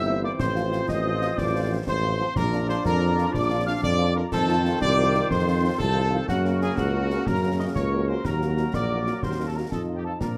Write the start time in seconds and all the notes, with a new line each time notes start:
Already playing: G1 E3 C4 E4 C5 E5 E6
0.07 A#3 C4 E4
0.22 A#3 C4 E4 D5 D6
0.38 A1 F3 C4 F4 C5 C6, concert bass drum, snare, crash
0.56 F3 C4 F4, snare
0.72 F3 C4 F4, snare
0.89 A1 D#5 D#6, concert bass drum, snare
1.04 F3 C4 F4
1.21 F3 C4 F4, snare
1.38 A1 D5 D6, concert bass drum, snare
1.54 F3 C4 F4
1.69 F3 C4 F4
1.86 A1 C5 C6, concert bass drum, snare
2.03 F3 C4 F4
2.19 F3 C4 F4
2.36 A#1 F3 D4 F4 A#4 D5 A#5, concert bass drum, snare
2.52 F3 D4 F4, snare
2.68 F3 D4 F4 C5 C6, snare
2.84 F2 A#4 A#5, concert bass drum, snare
3.01 F3 D4 F4
3.18 F3 D4 F4, snare
3.33 A#1 D5 D6, concert bass drum, snare
3.50 F3 D4 F4
3.65 F3 D4 F4 F5 F6
3.82 F2 D5 D6, concert bass drum, snare
3.98 F3 D4 F4
4.14 F3 D4 F4 A#4 A#5
4.32 F2 D#3 C4 F4 A4 C5 A5, concert bass drum, snare, crash
4.47 F3 D#4 F4, snare
4.63 F3 D#4 F4, snare
4.81 C2 D5 D6, concert bass drum, snare
4.97 F3 D#4 F4
5.13 F3 D#4 F4, snare
5.29 F2 C5 C6, concert bass drum, snare
5.46 F3 D#4 F4
5.62 F3 D#4 F4
5.78 C2 A4 A5, concert bass drum, snare
5.94 F3 D#4 F4
6.10 F3 D#4 F4
6.27 F#2 C#3 A#3 F#4 A#4 F#5, concert bass drum, snare
6.43 A#3 C#4 F#4, snare
6.61 A#3 C#4 F#4 G#4 G#5, snare
6.76 C#2 F#4 F#5, concert bass drum, snare
6.94 A#3 C#4 F#4
7.10 A#3 C#4 F#4, snare
7.26 F#2 A#4 A#5, concert bass drum, snare
7.44 A#3 C#4 F#4
7.58 A#3 C#4 F#4 D#5 D#6
7.74 C#2 C#5 C#6, concert bass drum, snare
7.93 A#3 C#4 F#4
8.07 A#3 C#4 F#4 C5 C6
8.24 D#2 F#3 A#3 F#4 A#4 A#5, concert bass drum, snare, crash
8.41 A#3 D#4 F#4, snare
8.57 A#3 D#4 F#4, snare
8.73 A#1 D5 D6, concert bass drum, snare
8.91 A#3 D#4 F#4
9.06 A#3 D#4 F#4, snare
9.22 D#2 C5 C6, concert bass drum, snare
9.38 A#3 D#4 F#4
9.46 A4 A5
9.54 A#3 D#4 F#4 A#4 A#5
9.69 F2 F3 D#4 F4 A4 D#5 A5, concert bass drum, snare
9.88 F3 D#4 F4
9.94 G4 G5
10.03 F3 D#4 F4 A4 A5
10.19 A#2 F3 D4 F4 A#4 D5 A#5, concert bass drum, snare